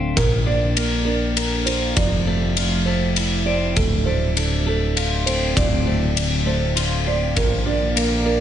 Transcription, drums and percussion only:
0.17 kick medium
0.17 ride soft
0.77 ride soft
1.37 ride soft
1.67 ride soft
1.97 kick medium
1.97 ride soft
2.57 ride soft
3.16 ride soft
3.76 kick medium
3.76 ride soft
4.37 ride soft
4.97 ride soft
5.27 ride soft
5.57 kick medium
5.57 ride soft
6.17 ride soft
6.77 ride soft
7.36 kick medium
7.36 ride soft
7.97 ride soft

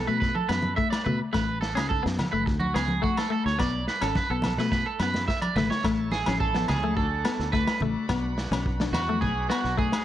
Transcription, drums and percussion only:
0.22 kick medium
0.22 snare soft
0.35 high conga medium
0.49 snare medium
0.49 low agogo medium
0.62 high conga medium
0.78 kick medium
0.92 snare medium
0.92 low agogo medium
1.06 low conga medium
1.34 kick medium
1.34 snare medium
1.34 low agogo medium
1.62 snare medium
1.77 snare medium
1.77 low agogo medium
1.91 kick medium
2.06 snare medium
2.19 snare medium
2.19 high conga medium
2.19 low conga medium
2.19 low agogo medium
2.47 kick medium
2.47 snare soft
2.60 high conga medium
2.76 snare medium
2.76 low agogo medium
2.88 high conga medium
3.04 kick medium
3.17 snare medium
3.17 low agogo medium
3.47 snare soft
3.59 kick medium
3.59 snare soft
3.59 low agogo medium
3.88 snare soft
4.02 snare soft
4.02 low agogo medium
4.15 kick medium
4.15 snare medium
4.15 high conga medium
4.42 snare medium
4.42 high conga medium
4.42 low conga medium
4.42 low agogo medium
4.58 snare soft
4.72 kick medium
4.72 snare medium
5.00 snare medium
5.00 low agogo medium
5.14 snare medium
5.14 high conga medium
5.28 kick medium
5.28 snare medium
5.42 high conga medium
5.42 low agogo medium
5.56 snare medium
5.56 low conga medium
5.71 snare medium
5.84 kick medium
5.84 snare medium
5.84 low agogo medium
6.11 snare medium
6.11 high conga medium
6.26 snare medium
6.26 high conga medium
6.26 low agogo medium
6.40 kick medium
6.54 snare medium
6.54 high conga medium
6.68 snare medium
6.68 low conga medium
6.68 low agogo medium
6.83 high conga medium
6.97 kick medium
7.25 snare medium
7.25 low agogo medium
7.39 snare soft
7.53 kick medium
7.53 snare soft
7.67 snare medium
7.67 low agogo medium
7.80 low conga medium
8.09 kick medium
8.09 snare medium
8.09 low agogo medium
8.38 snare medium
8.52 snare medium
8.52 high conga medium
8.52 low agogo medium
8.66 kick medium
8.80 snare medium
8.80 high conga medium
8.94 snare medium
8.94 low conga medium
8.94 low agogo medium
9.09 high conga medium
9.22 kick medium
9.50 snare medium
9.50 low agogo medium
9.64 snare soft
9.79 kick medium
9.92 snare medium
9.92 low agogo medium

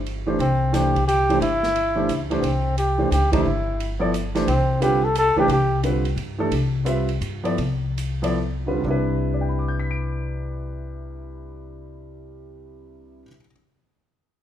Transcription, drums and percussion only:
0.06 ride soft
0.40 ride soft
0.74 snare soft
0.74 hi-hat pedal medium
0.74 ride medium
0.95 kick soft
0.95 ride soft
1.08 hi-hat pedal medium
1.08 ride medium
1.30 ride soft
1.42 ride medium
1.63 snare soft
1.76 ride soft
2.09 hi-hat pedal medium
2.09 ride medium
2.31 ride soft
2.44 ride medium
2.78 hi-hat pedal medium
2.78 ride medium
3.12 hi-hat pedal medium
3.12 ride medium
3.33 kick medium
3.33 ride medium
3.80 ride medium
4.14 hi-hat pedal medium
4.14 ride medium
4.35 snare soft
4.35 ride soft
4.48 ride medium
4.82 hi-hat pedal soft
4.82 ride medium
5.15 hi-hat pedal soft
5.15 ride medium
5.49 ride medium
5.83 hi-hat pedal soft
5.83 ride medium
6.05 ride soft
6.17 ride soft
6.52 ride medium
6.86 hi-hat pedal soft
6.86 ride medium
7.09 ride soft
7.22 hi-hat pedal soft
7.22 ride medium
7.45 ride soft
7.58 ride medium
7.98 hi-hat pedal soft
7.98 ride medium
8.24 ride medium

